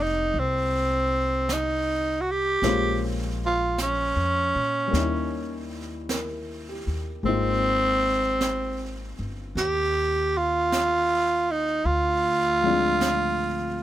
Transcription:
Already playing: F1 D#3 G#3 A#3 C4 G4
0.02 D#4
0.34 C2, brush sweep
0.39 C4
1.49 D#4, brush sweep, snare, hi-hat pedal
2.21 F#4
2.31 G4
2.62 A#1 G#3 A#3 C#4 F4 C5, brush sweep, snare
3.46 F4
3.78 C#4, brush sweep, snare, hi-hat pedal
4.16 F2
4.56 A#2
4.87 G3 A#3
4.93 D#2 C#4 D#4, brush sweep, snare
4.98 E4
6.09 A#4, brush sweep, snare, hi-hat pedal
6.69 G4
6.87 D#2
7.23 G#1 G#3 A#3 C4, brush sweep
7.28 D#4 F4
8.41 brush sweep, snare, hi-hat pedal
9.19 G1
9.55 D#2 G4, brush sweep, snare
10.37 F4
10.72 brush sweep, snare, hi-hat pedal
11.51 D#4
11.85 D2 F4, brush sweep
12.62 F3 G#3 C4 D4
12.67 F4
13.01 brush sweep, snare, hi-hat pedal

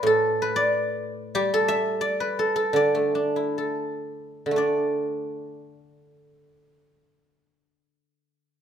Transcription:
Already playing: B4 D5 E5 G5
0.03 A2 A4
0.42 B4
0.56 D5
1.35 G3 G4
1.54 A4
1.68 E5
2.01 D5
2.20 B4
2.39 A4
2.56 A4
2.73 D3 D5
2.95 A3
3.15 D4
3.36 E4
3.58 A4
4.46 D3
4.51 A3
4.56 D4 D5

